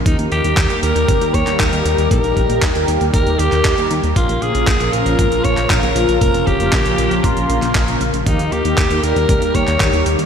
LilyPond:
<<
  \new Staff \with { instrumentName = "Alto saxophone" } { \time 4/4 \key ees \mixolydian \tempo 4 = 117 ees'8 g'4 bes'4 des''8 bes'4 | bes'4. r8 bes'8 g'4 r8 | f'8 aes'4 bes'4 des''8 bes'4 | bes'8 g'4. f'4. r8 |
ees'8 g'4 bes'4 des''4 r8 | }
  \new Staff \with { instrumentName = "Analog polysynth" } { \time 4/4 \key ees \mixolydian <bes ees' g' bes'>8. <bes ees' g' bes'>16 r16 <bes ees' g' bes'>8. <bes ees' g' bes'>8. <bes ees' g' bes'>8 <bes ees' g' bes'>16 r8 | <bes ees' g' bes'>8. <bes ees' g' bes'>16 r16 <bes ees' g' bes'>8. <bes ees' g' bes'>8. <bes ees' g' bes'>8 <bes ees' g' bes'>16 r8 | <bes des' f' bes'>8. <bes des' f' bes'>16 r16 <bes des' f' bes'>8. <bes des' f' bes'>8. <bes des' f' bes'>8 <bes des' f' bes'>16 r8 | <bes des' f' bes'>8. <bes des' f' bes'>16 r16 <bes des' f' bes'>8. <bes des' f' bes'>8. <bes des' f' bes'>8 <bes des' f' bes'>16 r8 |
<bes ees' g' bes'>8. <bes ees' g' bes'>16 r16 <bes ees' g' bes'>8. <bes ees' g' bes'>8. <bes ees' g' bes'>8 <bes ees' g' bes'>16 r8 | }
  \new Staff \with { instrumentName = "Analog synth pad" } { \clef bass \time 4/4 \key ees \mixolydian << { <ees g g'>1~ | <ees g g'>1 | <des f f'>1~ | <des f f'>1 |
<ees g g'>1 | } \\ { bes1~ | bes1~ | bes1~ | bes1~ |
bes1 | } >> }
  \new Staff \with { instrumentName = "Analog synth bass" } { \clef bass \time 4/4 \key ees \mixolydian ees,16 ees,16 ees,16 ees,16 ees,16 ees,16 ees,16 ees,16 des,16 ees,16 ees,16 ees,16 ees,16 ees,16 ees,16 ees,16 | bes,,16 bes,,16 bes,,16 bes,,16 ees,16 ees,16 ees,16 ees,16 ees,16 ees,16 ees,16 ees,16 ees,16 ees,16 ees,16 ees,16 | bes,,16 bes,,16 bes,,16 bes,,16 bes,,16 bes,,16 bes,,16 bes,,16 aes,,16 bes,,16 bes,,16 bes,,16 bes,,16 bes,,16 bes,,16 bes,,16 | f,,16 f,,16 f,,16 f,,16 bes,,16 bes,,16 bes,,16 bes,,16 bes,,16 bes,,16 bes,,16 bes,,16 bes,,16 bes,,16 bes,,16 bes,,16 |
ees,16 ees,16 ees,16 ees,16 ees,16 ees,16 ees,16 ees,16 des,16 ees,16 ees,16 ees,16 ees,16 ees,16 ees,16 ees,16 | }
  \new DrumStaff \with { instrumentName = "Drums" } \drummode { \time 4/4 <hh bd>16 hh16 hh16 hh16 <hc hh bd>16 hh16 hh16 hh16 <hh bd>16 hh16 <hh bd>16 <hc hh>16 <hc hh bd>16 hh16 hh16 hh16 | <hh bd>16 hh16 <hh bd>16 hh16 <hc hh bd>16 hh16 hh16 hh16 <hh bd>16 hh16 hh16 <hc hh>16 <hc hh bd>16 hh16 hh16 hh16 | <hh bd>16 hh16 hh16 hh16 <hc hh bd>16 hh16 hh16 hh16 <hh bd>16 hh16 <hh bd>16 <hc hh>16 <hc hh bd>16 hh16 hh16 hh16 | <hh bd>16 hh16 <hh bd>16 hh16 <hc hh bd>16 hh16 hh16 hh16 <hh bd>16 hh16 hh16 <hc hh>16 <hc hh bd>16 hh16 hh16 hh16 |
<hh bd>16 hh16 hh16 hh16 <hc hh bd>16 hh16 hh16 hh16 <hh bd>16 hh16 <hh bd>16 <hc hh>16 <hc hh bd>16 hh16 hh16 hh16 | }
>>